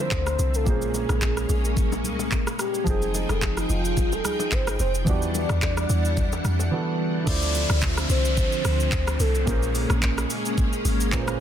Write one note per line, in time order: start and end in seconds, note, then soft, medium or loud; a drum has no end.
0.00 0.64 D3 medium
0.00 0.69 D3 medium
0.00 0.64 F3 medium
0.00 0.69 A3 medium
0.00 0.65 C4 medium
0.00 0.69 E4 medium
0.00 0.68 F4 medium
0.00 0.68 A#4 soft
0.00 0.69 C5 medium
0.00 0.12 C5 loud
0.00 0.64 E5 medium
0.11 0.37 D2 medium
0.11 0.57 C5 loud
0.11 kick medium
0.11 clap medium
0.11 high bongo medium
0.11 shaker medium
0.27 cross-stick loud
0.27 shaker medium
0.39 0.68 C2 loud
0.39 shaker medium
0.54 0.69 A4 medium
0.54 shaker soft
0.64 1.06 A#1 loud
0.64 2.81 A#2 medium
0.64 2.85 G#3 medium
0.64 2.82 A#3 medium
0.64 2.85 A#3 medium
0.64 0.74 C4 soft
0.64 2.85 C#4 medium
0.64 2.32 G#4 medium
0.64 kick loud
0.64 low conga medium
0.64 shaker medium
0.68 2.84 G#4 medium
0.68 2.84 C5 medium
0.73 2.86 C#4 medium
0.82 shaker soft
0.94 low bongo medium
0.94 shaker medium
1.09 1.46 A#1 loud
1.09 cross-stick medium
1.09 low bongo medium
1.09 shaker medium
1.22 kick medium
1.22 clap loud
1.22 high bongo medium
1.22 shaker medium
1.37 cross-stick medium
1.37 shaker medium
1.49 2.06 A#1 loud
1.49 shaker medium
1.65 shaker soft
1.76 kick loud
1.76 low conga medium
1.76 shaker medium
1.92 low bongo medium
1.92 shaker soft
2.04 2.29 C2 medium
2.04 low conga medium
2.04 shaker medium
2.19 low bongo medium
2.19 shaker medium
2.32 kick medium
2.32 clap medium
2.32 high bongo medium
2.32 shaker medium
2.47 cross-stick loud
2.47 shaker medium
2.59 2.89 G4 medium
2.59 cross-stick medium
2.59 shaker medium
2.74 shaker soft
2.84 3.26 F1 loud
2.84 5.02 F3 medium
2.84 5.05 F3 medium
2.84 5.02 C4 medium
2.84 5.03 D#4 medium
2.84 5.05 D#4 medium
2.84 5.05 G#4 medium
2.84 3.32 G#4 loud
2.84 5.05 G5 medium
2.84 kick loud
2.84 low conga medium
2.84 shaker medium
2.88 5.05 G#4 medium
2.88 5.04 G5 medium
3.02 shaker soft
3.14 low bongo medium
3.14 shaker medium
3.29 3.66 F1 loud
3.29 3.44 A4 medium
3.29 cross-stick medium
3.29 low bongo medium
3.29 shaker soft
3.42 3.59 G#4 medium
3.42 kick medium
3.42 clap loud
3.42 high bongo medium
3.42 shaker medium
3.57 3.72 D#4 medium
3.57 cross-stick medium
3.57 shaker medium
3.70 4.21 F1 medium
3.70 4.14 F4 loud
3.70 shaker medium
3.85 shaker soft
3.97 kick loud
3.97 low conga medium
3.97 shaker medium
4.12 4.27 A4 loud
4.12 low bongo medium
4.12 shaker soft
4.25 4.55 G#4 medium
4.25 cross-stick medium
4.25 low conga medium
4.25 shaker medium
4.39 low bongo medium
4.39 shaker medium
4.52 4.77 G1 loud
4.52 4.70 C5 loud
4.52 kick medium
4.52 clap medium
4.52 high bongo medium
4.52 shaker medium
4.67 4.80 G#4 loud
4.67 cross-stick loud
4.67 shaker medium
4.79 5.08 F1 medium
4.79 4.93 C5 loud
4.79 shaker medium
4.94 shaker soft
5.04 5.46 E2 loud
5.04 6.68 E3 medium
5.04 7.25 E3 medium
5.04 7.25 G3 medium
5.04 6.68 B3 medium
5.04 7.25 D4 medium
5.04 6.69 D4 medium
5.04 6.69 D5 loud
5.04 7.25 F#5 medium
5.04 kick loud
5.04 low conga medium
5.04 shaker medium
5.09 6.70 F#4 medium
5.09 6.71 G4 medium
5.22 shaker soft
5.35 low bongo medium
5.35 shaker medium
5.49 5.86 E2 loud
5.49 cross-stick medium
5.49 low bongo medium
5.49 shaker soft
5.62 kick medium
5.62 clap loud
5.62 high bongo medium
5.62 shaker medium
5.77 cross-stick loud
5.77 shaker medium
5.90 6.41 E2 medium
5.90 shaker medium
6.05 shaker soft
6.17 kick loud
6.17 low conga medium
6.17 shaker medium
6.32 low bongo medium
6.32 shaker soft
6.45 6.70 F2 medium
6.45 cross-stick medium
6.45 low conga medium
6.45 shaker medium
6.59 low bongo medium
6.59 shaker medium
6.71 7.27 E3 medium
6.71 7.27 B3 medium
6.71 7.27 D4 medium
6.71 7.28 F#4 medium
6.71 7.28 A4 medium
7.24 7.66 D2 loud
7.24 9.42 D3 medium
7.24 9.45 D3 medium
7.24 9.45 F3 medium
7.24 9.43 A3 medium
7.24 9.45 C4 medium
7.24 9.43 E4 medium
7.24 7.79 D5 loud
7.24 9.45 E5 medium
7.24 kick loud
7.24 crash loud
7.24 downlifter medium
7.24 shaker medium
7.29 9.44 F4 medium
7.29 9.45 C5 medium
7.42 shaker medium
7.55 open hi-hat soft
7.55 shaker medium
7.70 8.06 D2 loud
7.70 cross-stick loud
7.70 shaker medium
7.82 kick medium
7.82 clap loud
7.82 shaker medium
7.97 cross-stick loud
7.97 shaker medium
8.10 8.49 C2 loud
8.10 9.22 C5 loud
8.10 open hi-hat soft
8.10 shaker medium
8.25 shaker medium
8.37 kick loud
8.37 shaker medium
8.52 shaker soft
8.65 8.90 D2 medium
8.65 cross-stick loud
8.65 open hi-hat medium
8.65 shaker loud
8.80 shaker medium
8.92 9.18 D2 medium
8.92 kick medium
8.92 clap medium
8.92 shaker medium
9.07 cross-stick loud
9.07 shaker medium
9.20 9.45 C2 medium
9.20 9.48 A4 loud
9.20 open hi-hat soft
9.20 shaker medium
9.35 shaker medium
9.45 9.86 A#1 loud
9.45 11.08 A#2 medium
9.45 11.40 G#3 medium
9.45 11.09 A#3 medium
9.45 11.40 A#3 medium
9.45 11.40 C#4 medium
9.45 11.09 C#4 medium
9.45 9.99 A#4 medium
9.45 kick loud
9.45 shaker medium
9.49 11.10 G#4 medium
9.49 11.11 C5 medium
9.63 shaker soft
9.75 open hi-hat medium
9.75 shaker medium
9.90 10.26 A#1 loud
9.90 cross-stick loud
9.90 shaker medium
10.02 kick medium
10.02 clap loud
10.02 shaker medium
10.18 cross-stick loud
10.18 shaker medium
10.30 open hi-hat medium
10.30 shaker medium
10.45 shaker medium
10.58 kick loud
10.58 shaker medium
10.73 shaker soft
10.85 11.36 G#1 medium
10.85 open hi-hat medium
10.85 shaker loud
11.00 shaker medium
11.11 11.40 A#2 medium
11.11 11.40 A#3 medium
11.11 11.40 C#4 medium
11.11 11.40 G#4 medium
11.11 11.21 B4 medium
11.11 kick loud
11.11 clap medium
11.11 shaker medium
11.21 11.40 C5 medium
11.28 cross-stick loud
11.28 shaker medium